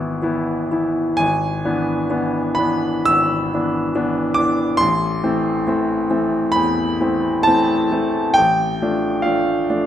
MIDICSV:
0, 0, Header, 1, 2, 480
1, 0, Start_track
1, 0, Key_signature, 0, "minor"
1, 0, Tempo, 955414
1, 609, Time_signature, 4, 2, 24, 8
1, 609, Tempo, 899550
1, 1089, Tempo, 975610
1, 1569, Tempo, 869565
1, 3489, Tempo, 894188
1, 5260, End_track
2, 0, Start_track
2, 0, Title_t, "Grand piano"
2, 0, Program_c, 0, 0
2, 0, Control_c, 0, 64, 127
2, 0, Note_on_c, 0, 32, 74
2, 0, Note_on_c, 0, 52, 57
2, 0, Note_on_c, 0, 59, 54
2, 0, Note_on_c, 0, 64, 63
2, 0, Note_on_c, 0, 71, 99
2, 102, Note_off_c, 0, 52, 0
2, 103, Note_off_c, 0, 59, 0
2, 105, Note_off_c, 0, 64, 0
2, 112, Note_on_c, 0, 52, 68
2, 116, Note_on_c, 0, 59, 62
2, 118, Note_on_c, 0, 64, 69
2, 337, Note_off_c, 0, 52, 0
2, 340, Note_off_c, 0, 59, 0
2, 341, Note_off_c, 0, 64, 0
2, 358, Note_on_c, 0, 59, 56
2, 362, Note_on_c, 0, 52, 54
2, 365, Note_on_c, 0, 64, 62
2, 587, Note_on_c, 0, 80, 118
2, 588, Note_off_c, 0, 59, 0
2, 590, Note_off_c, 0, 52, 0
2, 591, Note_off_c, 0, 64, 0
2, 600, Note_off_c, 0, 32, 0
2, 600, Note_on_c, 0, 32, 75
2, 603, Note_off_c, 0, 71, 0
2, 620, Control_c, 0, 64, 0
2, 711, Control_c, 0, 64, 127
2, 840, Note_off_c, 0, 32, 0
2, 843, Note_on_c, 0, 62, 66
2, 844, Note_on_c, 0, 52, 66
2, 845, Note_on_c, 0, 59, 63
2, 1064, Note_off_c, 0, 52, 0
2, 1064, Note_off_c, 0, 62, 0
2, 1065, Note_off_c, 0, 59, 0
2, 1082, Note_on_c, 0, 52, 66
2, 1084, Note_on_c, 0, 62, 66
2, 1086, Note_on_c, 0, 59, 66
2, 1303, Note_on_c, 0, 83, 111
2, 1304, Note_off_c, 0, 52, 0
2, 1305, Note_off_c, 0, 62, 0
2, 1306, Note_off_c, 0, 59, 0
2, 1316, Note_off_c, 0, 80, 0
2, 1320, Note_on_c, 0, 52, 60
2, 1324, Note_on_c, 0, 59, 63
2, 1326, Note_on_c, 0, 62, 63
2, 1546, Note_off_c, 0, 52, 0
2, 1548, Note_off_c, 0, 59, 0
2, 1549, Note_off_c, 0, 62, 0
2, 1553, Note_on_c, 0, 88, 126
2, 1557, Note_off_c, 0, 83, 0
2, 1567, Note_on_c, 0, 32, 70
2, 1808, Note_off_c, 0, 32, 0
2, 1819, Note_on_c, 0, 52, 56
2, 1820, Note_on_c, 0, 59, 53
2, 1821, Note_on_c, 0, 62, 64
2, 2029, Note_off_c, 0, 52, 0
2, 2030, Note_off_c, 0, 59, 0
2, 2031, Note_off_c, 0, 62, 0
2, 2046, Note_on_c, 0, 52, 69
2, 2048, Note_on_c, 0, 62, 71
2, 2049, Note_on_c, 0, 59, 64
2, 2261, Note_off_c, 0, 52, 0
2, 2262, Note_off_c, 0, 62, 0
2, 2263, Note_off_c, 0, 59, 0
2, 2263, Note_on_c, 0, 86, 110
2, 2276, Note_off_c, 0, 88, 0
2, 2280, Note_on_c, 0, 52, 61
2, 2283, Note_on_c, 0, 59, 55
2, 2284, Note_on_c, 0, 62, 73
2, 2499, Note_off_c, 0, 52, 0
2, 2499, Note_on_c, 0, 84, 127
2, 2501, Note_off_c, 0, 59, 0
2, 2502, Note_off_c, 0, 62, 0
2, 2513, Note_off_c, 0, 86, 0
2, 2517, Note_on_c, 0, 33, 79
2, 2533, Control_c, 0, 64, 0
2, 2629, Control_c, 0, 64, 127
2, 2754, Note_off_c, 0, 33, 0
2, 2756, Note_on_c, 0, 57, 65
2, 2756, Note_on_c, 0, 60, 71
2, 2757, Note_on_c, 0, 52, 63
2, 2979, Note_off_c, 0, 57, 0
2, 2979, Note_off_c, 0, 60, 0
2, 2980, Note_off_c, 0, 52, 0
2, 2995, Note_on_c, 0, 52, 63
2, 2996, Note_on_c, 0, 57, 65
2, 3001, Note_on_c, 0, 60, 69
2, 3219, Note_off_c, 0, 52, 0
2, 3220, Note_off_c, 0, 57, 0
2, 3222, Note_off_c, 0, 60, 0
2, 3232, Note_on_c, 0, 52, 65
2, 3236, Note_on_c, 0, 57, 61
2, 3236, Note_on_c, 0, 60, 67
2, 3460, Note_off_c, 0, 52, 0
2, 3462, Note_off_c, 0, 57, 0
2, 3462, Note_off_c, 0, 60, 0
2, 3462, Note_on_c, 0, 83, 119
2, 3477, Note_off_c, 0, 84, 0
2, 3484, Note_on_c, 0, 40, 70
2, 3720, Note_off_c, 0, 40, 0
2, 3726, Note_on_c, 0, 52, 59
2, 3728, Note_on_c, 0, 57, 60
2, 3731, Note_on_c, 0, 60, 66
2, 3947, Note_off_c, 0, 52, 0
2, 3948, Note_off_c, 0, 57, 0
2, 3950, Note_off_c, 0, 60, 0
2, 3954, Note_on_c, 0, 81, 126
2, 3957, Note_off_c, 0, 83, 0
2, 3976, Note_on_c, 0, 52, 68
2, 3976, Note_on_c, 0, 57, 67
2, 3978, Note_on_c, 0, 60, 76
2, 4193, Note_off_c, 0, 52, 0
2, 4193, Note_off_c, 0, 57, 0
2, 4194, Note_off_c, 0, 60, 0
2, 4214, Note_on_c, 0, 52, 58
2, 4216, Note_on_c, 0, 57, 62
2, 4221, Note_on_c, 0, 60, 63
2, 4436, Note_off_c, 0, 52, 0
2, 4437, Note_off_c, 0, 57, 0
2, 4440, Note_off_c, 0, 60, 0
2, 4440, Note_on_c, 0, 79, 124
2, 4448, Note_off_c, 0, 81, 0
2, 4460, Note_on_c, 0, 33, 71
2, 4464, Control_c, 0, 64, 0
2, 4546, Control_c, 0, 64, 127
2, 4693, Note_off_c, 0, 33, 0
2, 4700, Note_on_c, 0, 57, 59
2, 4701, Note_on_c, 0, 62, 68
2, 4702, Note_on_c, 0, 53, 64
2, 4914, Note_off_c, 0, 57, 0
2, 4915, Note_off_c, 0, 53, 0
2, 4915, Note_off_c, 0, 62, 0
2, 4915, Note_on_c, 0, 77, 80
2, 4926, Note_off_c, 0, 79, 0
2, 4934, Note_on_c, 0, 53, 53
2, 4935, Note_on_c, 0, 57, 60
2, 4936, Note_on_c, 0, 62, 62
2, 5149, Note_off_c, 0, 53, 0
2, 5149, Note_off_c, 0, 57, 0
2, 5150, Note_off_c, 0, 62, 0
2, 5171, Note_on_c, 0, 53, 57
2, 5172, Note_on_c, 0, 57, 54
2, 5172, Note_on_c, 0, 62, 67
2, 5260, Note_off_c, 0, 53, 0
2, 5260, Note_off_c, 0, 57, 0
2, 5260, Note_off_c, 0, 62, 0
2, 5260, Note_off_c, 0, 77, 0
2, 5260, End_track
0, 0, End_of_file